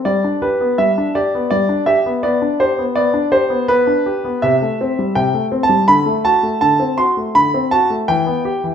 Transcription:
<<
  \new Staff \with { instrumentName = "Grand piano" } { \time 3/4 \key g \major \tempo 4 = 82 d''8 b'8 e''8 d''8 d''8 e''8 | d''8 c''8 d''8 c''8 b'4 | e''4 \tuplet 3/2 { g''4 a''8 } b''8 a''8 | a''8 c'''8 b''8 a''8 g''4 | }
  \new Staff \with { instrumentName = "Grand piano" } { \time 3/4 \key g \major g16 d'16 g'16 b16 g16 d'16 g'16 b16 g16 d'16 g'16 b16 | b16 d'16 g'16 b16 b16 d'16 g'16 b16 b16 d'16 g'16 b16 | c16 a16 c'16 g16 c16 a16 c'16 g16 d16 a16 fis'16 a16 | d16 c'16 fis'16 a16 d16 c'16 fis'16 a16 e16 b16 g'16 e16 | }
>>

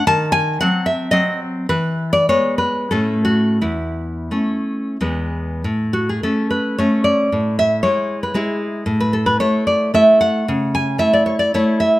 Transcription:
\new Staff \with { instrumentName = "Nylon-string guitar" } { \time 3/4 \key a \major \tempo 4 = 111 << { a''8 gis''8 fis''8 e''8 dis''8 r8 | b'8. d''16 cis''8 b'8 a'8 fis'8 | e'2~ e'8 r8 | r8 fis'16 gis'16 a'8 b'8 cis''8 d''8~ |
d''8 e''8 cis''8. b'16 gis'4~ | gis'16 b'16 a'16 b'16 cis''8 d''8 e''8 fis''8~ | fis''8 gis''8 e''16 d''16 cis''16 d''16 cis''8 e''8 | } \\ { dis4 <fis bis>4 <fis bis>4 | e4 <gis b>4 <a, a cis'>4 | e,4 <a cis'>4 <e, gis b>4 | a,4 <a cis'>4 <a cis'>4 |
a,4 <gis e'>4 <gis e'>4 | a,4 <a e'>4 <a e'>4 | cis4 <a e'>4 <a e'>4 | } >> }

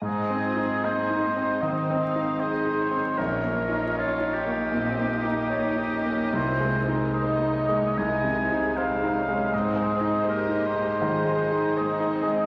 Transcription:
<<
  \new Staff \with { instrumentName = "Oboe" } { \time 4/4 \key aes \major \tempo 4 = 77 aes'4 c''4 ees''4 c''4 | bes'4 f'8 g'2~ g'8 | c''8 r8 ees''4 aes''4 f''4 | ees''4 bes'8 c''4. ees''4 | }
  \new Staff \with { instrumentName = "Violin section" } { \time 4/4 \key aes \major << { ees''4 ees''4 c''8 f''8 ees''8 des''8 | des''2 ees''2~ | ees''4 c''8 des''8 ees''8 c''8 c''4 | c''4 ees''4 ees''4 c''4 | } \\ { aes'2 c''4 c''4 | des''4 bes'2.~ | bes'1 | aes'4 c''4 c''4 aes'4 | } >> }
  \new Staff \with { instrumentName = "Grand piano" } { \time 4/4 \key aes \major \tuplet 3/2 { aes,8 c'8 ees'8 ees''8 ees'8 c'8 ees8 c'8 ees'8 ees''8 ees'8 c'8 } | \tuplet 3/2 { bes,,8 bes8 ees'8 des''8 ees'8 bes8 bes,8 bes8 ees'8 des''8 ees'8 bes8 } | \tuplet 3/2 { c,8 aes8 ees'8 c''8 ees'8 aes8 c,8 c8 ees'8 c''8 ees'8 aes8 } | \tuplet 3/2 { aes,8 aes8 ees'8 c''8 ees'8 aes8 ees8 aes8 ees'8 c''8 ees'8 aes8 } | }
  \new Staff \with { instrumentName = "Viola section" } { \time 4/4 \key aes \major << { ees'8 f'8 ees'4 ees'4 aes'4 | f'2 ees'4 ees'4 | f'8 ees'4. ees'4 c'8 des'8 | ees'4 g'4 f'8 ees'4. | } \\ { c'4 bes8 aes8 c'4 ees'4 | des'8 des'4. c'8 bes8 ees'8 des'8 | c'4 bes4 aes2 | c'8 c'8 bes4 aes4 bes8 c'8 | } >> }
>>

